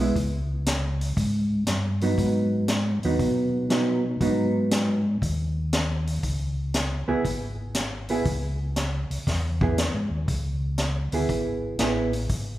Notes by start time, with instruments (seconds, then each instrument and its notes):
Already playing: tonewheel organ B1
0.00 hollow-body jazz guitar G#3 B3 E4
0.16 tonewheel organ C#2, kick, open hi-hat
0.66 snare, closed hi-hat
1.01 open hi-hat
1.16 tonewheel organ G#2, kick, open hi-hat
1.67 tonewheel organ G2, snare, closed hi-hat
2.01 hollow-body jazz guitar F#3 B3 D#4, open hi-hat
2.18 tonewheel organ G#2, kick, open hi-hat
2.68 snare, closed hi-hat
3.03 tonewheel organ D#2, hollow-body jazz guitar F#3 B3 D#4, open hi-hat
3.19 tonewheel organ B2, kick, open hi-hat
3.70 hollow-body jazz guitar F#3 B3 D#4, snare, closed hi-hat
4.20 tonewheel organ G#2, hollow-body jazz guitar F#3 B3 D#4, kick, open hi-hat
4.71 snare, closed hi-hat
5.22 tonewheel organ D#2, kick, open hi-hat
5.73 snare, closed hi-hat
6.07 open hi-hat
6.23 tonewheel organ C#2, kick, open hi-hat
6.74 snare, closed hi-hat
7.08 tonewheel organ C#2, hollow-body jazz guitar B3 E4 G#4
7.24 tonewheel organ G#1, kick, open hi-hat
7.75 snare, closed hi-hat
8.09 hollow-body jazz guitar B3 E4 G#4, open hi-hat
8.25 tonewheel organ C#2, kick, open hi-hat
8.76 snare, closed hi-hat
9.10 tonewheel organ C#2, open hi-hat
9.27 tonewheel organ E2, kick, snare, open hi-hat
9.61 hollow-body jazz guitar B3 E4 G#4, kick
9.78 snare, closed hi-hat
9.94 tonewheel organ G#2
10.10 tonewheel organ D#2
10.28 tonewheel organ C#2, kick, open hi-hat
10.78 snare, closed hi-hat
11.12 tonewheel organ D2, hollow-body jazz guitar B3 E4 G#4, open hi-hat
11.29 tonewheel organ G#1, kick, open hi-hat
11.79 tonewheel organ A1, hollow-body jazz guitar B3 E4 G#4, snare, closed hi-hat
12.13 open hi-hat
12.29 tonewheel organ G#1, kick, open hi-hat